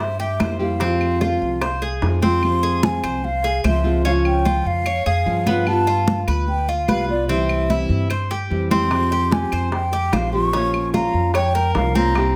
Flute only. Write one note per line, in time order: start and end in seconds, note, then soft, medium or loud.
0.00 0.18 E5 medium
0.20 0.58 E5 medium
0.61 1.99 F5 medium
2.23 2.85 C6 loud
2.84 3.26 G#5 medium
3.24 3.65 F5 loud
3.65 4.03 E5 medium
4.06 4.12 F5 loud
4.26 4.68 G5 medium
4.67 5.06 F5 loud
5.06 5.69 F5 medium
5.67 6.21 A5 loud
6.49 6.70 G5 medium
6.69 6.89 F5 medium
6.90 7.08 F5 medium
7.10 7.28 D5 medium
7.30 8.06 E5 medium
8.71 9.34 C6 loud
9.32 9.73 G#5 medium
9.73 10.15 G5 medium
10.13 10.33 F5 medium
10.34 10.90 C#6 loud
10.94 11.32 A#5 medium
11.35 11.72 G5 medium
11.76 11.97 F5 medium
11.96 12.36 A#5 medium